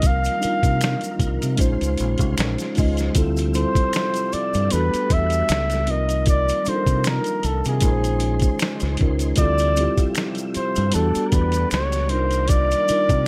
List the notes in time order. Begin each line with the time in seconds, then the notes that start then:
Already playing: C2 D#3 F3 G3 A#3 C4 D#4 F4 A#4
0.02 kick, closed hi-hat, maracas
0.07 F5
0.24 closed hi-hat, maracas
0.39 G3 D4 D#4, closed hi-hat, maracas
0.43 F4 A#4, muted fingered electric bass stroke
0.63 C3, kick, closed hi-hat, maracas
0.81 finger snap, snare, closed hi-hat, maracas
1.01 closed hi-hat, maracas
1.20 C2, kick, closed hi-hat, maracas
1.42 C3, closed hi-hat, maracas
1.57 A#1 C#3 G#3 C#4 D#4 F4 C5, kick, closed hi-hat
1.61 C5, maracas
1.81 C#2, closed hi-hat, maracas
1.98 A#1, closed hi-hat, maracas
2.18 C2, kick, closed hi-hat, maracas
2.38 A#1, finger snap, snare, closed hi-hat, maracas
2.58 snare, closed hi-hat, maracas
2.74 G#3 C#4 D#4 F4, open hi-hat, maracas
2.78 C#2 D#5, kick
2.97 snare, closed hi-hat, maracas
3.13 D2 C3 F3 G3 C4 E4 F4 E5, kick, closed hi-hat, maracas
3.18 A4
3.37 closed hi-hat, maracas
3.53 G3 C4 E4 F4 C5, closed hi-hat, maracas
3.58 A4
3.75 kick, closed hi-hat, maracas
3.93 finger snap, snare, closed hi-hat, maracas
4.14 closed hi-hat, maracas
4.33 D5, muted fingered electric bass stroke, closed hi-hat, maracas
4.54 G2, closed hi-hat, maracas
4.70 E2 G3 A3 B3 D4 F#4 B4, closed hi-hat, maracas
4.75 A4
4.94 muted fingered electric bass stroke, closed hi-hat, maracas
5.10 E2 E5, kick, closed hi-hat, maracas
5.30 closed hi-hat, maracas
5.49 C#2, finger snap, snare, closed hi-hat, maracas
5.70 snare, closed hi-hat, maracas
5.86 C2 D#3 F3 G3 A#3 C4 D#4, closed hi-hat
5.90 F4 A#4 D#5
6.09 closed hi-hat, maracas
6.26 D5, kick, closed hi-hat, maracas
6.49 closed hi-hat, maracas
6.64 G3 D4 D#4 F4, muted fingered electric bass stroke, closed hi-hat, maracas
6.69 A4 C5
6.76 A#4
6.87 C3, kick, closed hi-hat, maracas
7.04 A#4, finger snap, snare, closed hi-hat, maracas
7.24 closed hi-hat, maracas
7.43 C2 A4, closed hi-hat, maracas
7.65 C3 G#4, closed hi-hat, maracas
7.81 A#1 C#3 G#3 C#4 D#4 F4 C5, kick, closed hi-hat, maracas
7.86 A#4
7.92 C5
8.04 closed hi-hat, maracas
8.20 closed hi-hat, maracas
8.40 kick, closed hi-hat, maracas
8.59 finger snap, snare, closed hi-hat, maracas
8.80 C#2, snare, closed hi-hat, maracas
8.97 G#3 C#4 D#4, kick, closed hi-hat
9.01 C#2 F4 A#4
9.19 closed hi-hat, maracas
9.36 D2 C3 F3 G3 C4 E4 D5 E5, kick, closed hi-hat, maracas
9.40 F4 A4
9.58 closed hi-hat, maracas
9.76 G3 C4 E4 F4, closed hi-hat, maracas
9.80 G4
9.98 kick, closed hi-hat, maracas
10.15 finger snap, snare, closed hi-hat, maracas
10.35 closed hi-hat, maracas
10.54 C5, muted fingered electric bass stroke, closed hi-hat, maracas
10.76 G2, closed hi-hat, maracas
10.92 E2 G3 A3 B3 D4 F#4 A4, closed hi-hat, maracas
10.96 A4
11.15 muted fingered electric bass stroke, closed hi-hat, maracas
11.28 A#4, closed hi-hat
11.32 E2 B4, kick, maracas
11.52 closed hi-hat, maracas
11.71 C#2 C#5, finger snap, snare, closed hi-hat, maracas
11.92 snare, closed hi-hat, maracas
12.09 C2 D#3 G3 A#3 D4 D#4 F4 C5 D5, closed hi-hat
12.14 A#4
12.31 closed hi-hat, maracas
12.48 D5, kick, closed hi-hat, maracas
12.71 closed hi-hat, maracas
12.87 G3 D4 D#4, muted fingered electric bass stroke, closed hi-hat, maracas
12.91 F4 A#4
13.09 C3, kick, closed hi-hat, maracas